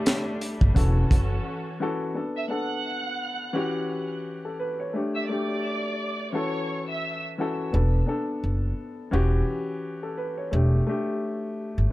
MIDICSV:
0, 0, Header, 1, 6, 480
1, 0, Start_track
1, 0, Tempo, 697674
1, 1483, Time_signature, 4, 2, 24, 8
1, 8203, End_track
2, 0, Start_track
2, 0, Title_t, "Violin section"
2, 0, Program_c, 0, 48
2, 1624, Note_on_c, 0, 76, 80
2, 1630, Note_on_c, 0, 88, 57
2, 1713, Note_off_c, 0, 76, 0
2, 1716, Note_off_c, 0, 88, 0
2, 1725, Note_on_c, 0, 78, 82
2, 1730, Note_on_c, 0, 90, 70
2, 2557, Note_off_c, 0, 78, 0
2, 2559, Note_off_c, 0, 90, 0
2, 3541, Note_on_c, 0, 76, 78
2, 3546, Note_on_c, 0, 88, 60
2, 3631, Note_off_c, 0, 76, 0
2, 3634, Note_off_c, 0, 88, 0
2, 3635, Note_on_c, 0, 74, 78
2, 3640, Note_on_c, 0, 86, 60
2, 4331, Note_off_c, 0, 74, 0
2, 4334, Note_off_c, 0, 86, 0
2, 4357, Note_on_c, 0, 73, 92
2, 4362, Note_on_c, 0, 85, 64
2, 4717, Note_off_c, 0, 73, 0
2, 4720, Note_off_c, 0, 85, 0
2, 4742, Note_on_c, 0, 76, 75
2, 4747, Note_on_c, 0, 88, 54
2, 4959, Note_off_c, 0, 76, 0
2, 4961, Note_off_c, 0, 88, 0
2, 8203, End_track
3, 0, Start_track
3, 0, Title_t, "Upright piano"
3, 0, Program_c, 1, 0
3, 0, Control_c, 1, 64, 127
3, 0, Note_on_c, 1, 57, 82
3, 0, Note_on_c, 1, 62, 66
3, 0, Note_on_c, 1, 67, 91
3, 0, Note_on_c, 1, 73, 70
3, 487, Note_off_c, 1, 57, 0
3, 492, Note_off_c, 1, 62, 0
3, 497, Note_off_c, 1, 67, 0
3, 511, Note_on_c, 1, 52, 87
3, 517, Note_on_c, 1, 61, 78
3, 524, Note_on_c, 1, 66, 76
3, 530, Control_c, 1, 64, 0
3, 530, Note_on_c, 1, 69, 94
3, 535, Note_off_c, 1, 73, 0
3, 650, Control_c, 1, 64, 127
3, 1109, Note_off_c, 1, 52, 0
3, 1112, Note_off_c, 1, 61, 0
3, 1116, Note_off_c, 1, 66, 0
3, 1119, Note_off_c, 1, 69, 0
3, 1238, Note_on_c, 1, 52, 87
3, 1244, Note_on_c, 1, 61, 80
3, 1251, Note_on_c, 1, 66, 76
3, 1257, Note_on_c, 1, 69, 100
3, 1423, Note_off_c, 1, 52, 0
3, 1426, Note_off_c, 1, 61, 0
3, 1429, Note_off_c, 1, 66, 0
3, 1432, Note_off_c, 1, 69, 0
3, 1471, Note_on_c, 1, 59, 72
3, 1481, Note_on_c, 1, 62, 66
3, 1490, Note_on_c, 1, 69, 80
3, 1491, Control_c, 1, 64, 0
3, 1626, Control_c, 1, 64, 127
3, 1659, Note_off_c, 1, 59, 0
3, 1664, Note_off_c, 1, 62, 0
3, 1669, Note_off_c, 1, 69, 0
3, 1707, Note_on_c, 1, 59, 71
3, 1716, Note_on_c, 1, 62, 72
3, 1726, Note_on_c, 1, 69, 83
3, 2403, Note_off_c, 1, 59, 0
3, 2407, Note_off_c, 1, 62, 0
3, 2412, Note_off_c, 1, 69, 0
3, 2428, Note_on_c, 1, 52, 92
3, 2435, Note_on_c, 1, 61, 89
3, 2441, Note_on_c, 1, 66, 87
3, 2448, Note_on_c, 1, 67, 108
3, 2451, Control_c, 1, 64, 0
3, 2582, Control_c, 1, 64, 127
3, 3028, Note_off_c, 1, 52, 0
3, 3031, Note_off_c, 1, 61, 0
3, 3034, Note_off_c, 1, 66, 0
3, 3038, Note_off_c, 1, 67, 0
3, 3062, Note_on_c, 1, 69, 66
3, 3157, Note_off_c, 1, 69, 0
3, 3162, Note_on_c, 1, 71, 80
3, 3296, Note_off_c, 1, 71, 0
3, 3300, Note_on_c, 1, 73, 64
3, 3392, Note_on_c, 1, 57, 67
3, 3402, Note_on_c, 1, 62, 67
3, 3411, Note_on_c, 1, 67, 73
3, 3412, Control_c, 1, 64, 0
3, 3530, Note_off_c, 1, 73, 0
3, 3532, Control_c, 1, 64, 127
3, 3580, Note_off_c, 1, 57, 0
3, 3585, Note_off_c, 1, 62, 0
3, 3589, Note_off_c, 1, 67, 0
3, 3637, Note_on_c, 1, 57, 74
3, 3646, Note_on_c, 1, 62, 60
3, 3656, Note_on_c, 1, 67, 84
3, 4328, Note_off_c, 1, 57, 0
3, 4332, Note_off_c, 1, 62, 0
3, 4337, Note_off_c, 1, 67, 0
3, 4350, Note_on_c, 1, 52, 79
3, 4357, Note_on_c, 1, 61, 72
3, 4363, Note_on_c, 1, 66, 72
3, 4369, Note_on_c, 1, 69, 88
3, 4372, Control_c, 1, 64, 0
3, 4487, Control_c, 1, 64, 127
3, 4949, Note_off_c, 1, 52, 0
3, 4952, Note_off_c, 1, 61, 0
3, 4955, Note_off_c, 1, 66, 0
3, 4958, Note_off_c, 1, 69, 0
3, 5078, Note_on_c, 1, 52, 85
3, 5085, Note_on_c, 1, 61, 75
3, 5091, Note_on_c, 1, 66, 75
3, 5098, Note_on_c, 1, 69, 93
3, 5263, Note_off_c, 1, 52, 0
3, 5266, Note_off_c, 1, 61, 0
3, 5269, Note_off_c, 1, 66, 0
3, 5273, Note_off_c, 1, 69, 0
3, 5311, Note_on_c, 1, 59, 76
3, 5320, Note_on_c, 1, 62, 65
3, 5330, Note_on_c, 1, 69, 77
3, 5333, Control_c, 1, 64, 0
3, 5462, Control_c, 1, 64, 127
3, 5499, Note_off_c, 1, 59, 0
3, 5504, Note_off_c, 1, 62, 0
3, 5508, Note_off_c, 1, 69, 0
3, 5545, Note_on_c, 1, 59, 69
3, 5555, Note_on_c, 1, 62, 73
3, 5564, Note_on_c, 1, 69, 84
3, 6242, Note_off_c, 1, 59, 0
3, 6247, Note_off_c, 1, 62, 0
3, 6252, Note_off_c, 1, 69, 0
3, 6268, Note_on_c, 1, 52, 91
3, 6274, Note_on_c, 1, 61, 93
3, 6280, Note_on_c, 1, 66, 86
3, 6287, Note_on_c, 1, 67, 112
3, 6292, Control_c, 1, 64, 0
3, 6428, Control_c, 1, 64, 127
3, 6868, Note_off_c, 1, 52, 0
3, 6871, Note_off_c, 1, 61, 0
3, 6874, Note_off_c, 1, 66, 0
3, 6877, Note_off_c, 1, 67, 0
3, 6900, Note_on_c, 1, 69, 67
3, 6996, Note_off_c, 1, 69, 0
3, 7001, Note_on_c, 1, 71, 80
3, 7135, Note_off_c, 1, 71, 0
3, 7139, Note_on_c, 1, 73, 64
3, 7232, Note_on_c, 1, 57, 69
3, 7241, Note_on_c, 1, 62, 65
3, 7250, Note_on_c, 1, 67, 74
3, 7252, Control_c, 1, 64, 0
3, 7369, Note_off_c, 1, 73, 0
3, 7378, Control_c, 1, 64, 127
3, 7419, Note_off_c, 1, 57, 0
3, 7424, Note_off_c, 1, 62, 0
3, 7429, Note_off_c, 1, 67, 0
3, 7476, Note_on_c, 1, 57, 80
3, 7486, Note_on_c, 1, 62, 65
3, 7495, Note_on_c, 1, 67, 86
3, 8167, Note_off_c, 1, 57, 0
3, 8172, Note_off_c, 1, 62, 0
3, 8177, Note_off_c, 1, 67, 0
3, 8203, End_track
4, 0, Start_track
4, 0, Title_t, "String section"
4, 0, Program_c, 2, 48
4, 0, Note_on_c, 2, 55, 101
4, 0, Note_on_c, 2, 57, 83
4, 0, Note_on_c, 2, 62, 77
4, 504, Note_off_c, 2, 55, 0
4, 509, Note_off_c, 2, 57, 0
4, 509, Note_off_c, 2, 62, 0
4, 521, Note_on_c, 2, 52, 88
4, 521, Note_on_c, 2, 61, 76
4, 521, Note_on_c, 2, 66, 71
4, 521, Note_on_c, 2, 69, 92
4, 1472, Note_off_c, 2, 52, 0
4, 1472, Note_off_c, 2, 61, 0
4, 1472, Note_off_c, 2, 66, 0
4, 1472, Note_off_c, 2, 69, 0
4, 8203, End_track
5, 0, Start_track
5, 0, Title_t, "Upright bass"
5, 0, Program_c, 3, 32
5, 422, Note_on_c, 3, 31, 102
5, 500, Note_off_c, 3, 31, 0
5, 524, Note_on_c, 3, 28, 112
5, 711, Note_off_c, 3, 28, 0
5, 764, Note_on_c, 3, 30, 97
5, 951, Note_off_c, 3, 30, 0
5, 5323, Note_on_c, 3, 28, 104
5, 5510, Note_off_c, 3, 28, 0
5, 5804, Note_on_c, 3, 30, 90
5, 5991, Note_off_c, 3, 30, 0
5, 6283, Note_on_c, 3, 28, 101
5, 6470, Note_off_c, 3, 28, 0
5, 7243, Note_on_c, 3, 28, 112
5, 7430, Note_off_c, 3, 28, 0
5, 8103, Note_on_c, 3, 31, 94
5, 8181, Note_off_c, 3, 31, 0
5, 8203, End_track
6, 0, Start_track
6, 0, Title_t, "Drums"
6, 42, Note_on_c, 9, 42, 106
6, 47, Note_on_c, 9, 38, 116
6, 54, Note_on_c, 9, 39, 92
6, 111, Note_off_c, 9, 42, 0
6, 116, Note_off_c, 9, 38, 0
6, 123, Note_off_c, 9, 39, 0
6, 285, Note_on_c, 9, 42, 73
6, 353, Note_off_c, 9, 42, 0
6, 421, Note_on_c, 9, 36, 94
6, 490, Note_off_c, 9, 36, 0
6, 524, Note_on_c, 9, 36, 94
6, 526, Note_on_c, 9, 42, 88
6, 593, Note_off_c, 9, 36, 0
6, 595, Note_off_c, 9, 42, 0
6, 763, Note_on_c, 9, 36, 93
6, 767, Note_on_c, 9, 42, 79
6, 832, Note_off_c, 9, 36, 0
6, 836, Note_off_c, 9, 42, 0
6, 8203, End_track
0, 0, End_of_file